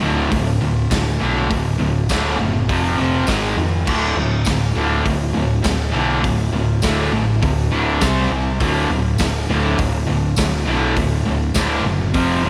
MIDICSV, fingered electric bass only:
0, 0, Header, 1, 2, 480
1, 0, Start_track
1, 0, Tempo, 591716
1, 1209, Time_signature, 4, 2, 24, 8
1, 10136, End_track
2, 0, Start_track
2, 0, Title_t, "Fingered electric bass"
2, 0, Program_c, 0, 33
2, 22, Note_on_c, 0, 26, 93
2, 217, Note_off_c, 0, 26, 0
2, 263, Note_on_c, 0, 26, 101
2, 459, Note_off_c, 0, 26, 0
2, 506, Note_on_c, 0, 26, 84
2, 701, Note_off_c, 0, 26, 0
2, 741, Note_on_c, 0, 26, 98
2, 938, Note_off_c, 0, 26, 0
2, 978, Note_on_c, 0, 35, 90
2, 1177, Note_off_c, 0, 35, 0
2, 1219, Note_on_c, 0, 26, 95
2, 1418, Note_off_c, 0, 26, 0
2, 1465, Note_on_c, 0, 26, 92
2, 1662, Note_off_c, 0, 26, 0
2, 1709, Note_on_c, 0, 26, 92
2, 1904, Note_off_c, 0, 26, 0
2, 1938, Note_on_c, 0, 30, 95
2, 2138, Note_off_c, 0, 30, 0
2, 2189, Note_on_c, 0, 29, 96
2, 2385, Note_off_c, 0, 29, 0
2, 2422, Note_on_c, 0, 29, 92
2, 2621, Note_off_c, 0, 29, 0
2, 2663, Note_on_c, 0, 32, 98
2, 2862, Note_off_c, 0, 32, 0
2, 2894, Note_on_c, 0, 41, 81
2, 3097, Note_off_c, 0, 41, 0
2, 3145, Note_on_c, 0, 26, 93
2, 3344, Note_off_c, 0, 26, 0
2, 3373, Note_on_c, 0, 26, 85
2, 3577, Note_off_c, 0, 26, 0
2, 3628, Note_on_c, 0, 26, 93
2, 3826, Note_off_c, 0, 26, 0
2, 3861, Note_on_c, 0, 26, 94
2, 4062, Note_off_c, 0, 26, 0
2, 4108, Note_on_c, 0, 26, 96
2, 4307, Note_off_c, 0, 26, 0
2, 4350, Note_on_c, 0, 26, 92
2, 4548, Note_off_c, 0, 26, 0
2, 4581, Note_on_c, 0, 26, 98
2, 4783, Note_off_c, 0, 26, 0
2, 4817, Note_on_c, 0, 35, 82
2, 5021, Note_off_c, 0, 35, 0
2, 5060, Note_on_c, 0, 26, 98
2, 5263, Note_off_c, 0, 26, 0
2, 5287, Note_on_c, 0, 26, 97
2, 5495, Note_off_c, 0, 26, 0
2, 5547, Note_on_c, 0, 26, 92
2, 5747, Note_off_c, 0, 26, 0
2, 5768, Note_on_c, 0, 33, 93
2, 5976, Note_off_c, 0, 33, 0
2, 6026, Note_on_c, 0, 38, 101
2, 6226, Note_off_c, 0, 38, 0
2, 6253, Note_on_c, 0, 26, 90
2, 6459, Note_off_c, 0, 26, 0
2, 6503, Note_on_c, 0, 36, 91
2, 6704, Note_off_c, 0, 36, 0
2, 6736, Note_on_c, 0, 36, 88
2, 6940, Note_off_c, 0, 36, 0
2, 6986, Note_on_c, 0, 26, 97
2, 7185, Note_off_c, 0, 26, 0
2, 7219, Note_on_c, 0, 26, 90
2, 7421, Note_off_c, 0, 26, 0
2, 7463, Note_on_c, 0, 26, 88
2, 7663, Note_off_c, 0, 26, 0
2, 7702, Note_on_c, 0, 26, 94
2, 7903, Note_off_c, 0, 26, 0
2, 7940, Note_on_c, 0, 26, 106
2, 8141, Note_off_c, 0, 26, 0
2, 8186, Note_on_c, 0, 26, 97
2, 8384, Note_off_c, 0, 26, 0
2, 8424, Note_on_c, 0, 26, 100
2, 8622, Note_off_c, 0, 26, 0
2, 8657, Note_on_c, 0, 35, 93
2, 8857, Note_off_c, 0, 35, 0
2, 8899, Note_on_c, 0, 26, 97
2, 9098, Note_off_c, 0, 26, 0
2, 9130, Note_on_c, 0, 26, 91
2, 9332, Note_off_c, 0, 26, 0
2, 9375, Note_on_c, 0, 26, 99
2, 9574, Note_off_c, 0, 26, 0
2, 9616, Note_on_c, 0, 30, 98
2, 9849, Note_off_c, 0, 30, 0
2, 9849, Note_on_c, 0, 29, 101
2, 10050, Note_off_c, 0, 29, 0
2, 10084, Note_on_c, 0, 29, 91
2, 10136, Note_off_c, 0, 29, 0
2, 10136, End_track
0, 0, End_of_file